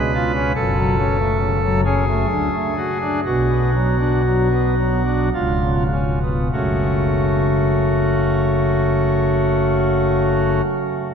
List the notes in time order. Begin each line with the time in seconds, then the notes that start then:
Already playing: C#2 C#3 G#3 B4
0.14 F4
0.34 C#4
0.55 F#1 F#2 A4
0.77 F#3
0.98 C#4
1.20 A3
1.41 C#3
1.64 F#3
1.85 C#4 G#4
2.08 A3
2.30 D2 D3
2.54 A3
2.77 F#4
3.01 D4
3.25 B1 B2 F#4
3.49 B3
3.74 F#3
3.99 D4
4.26 F#3
4.51 B3
4.78 F#3
5.05 D4
5.34 C#1 C#2 F4
5.61 C#3
5.92 C#4
6.22 B3
6.53 F#1 F#2 C#3 A3 C#4 F#4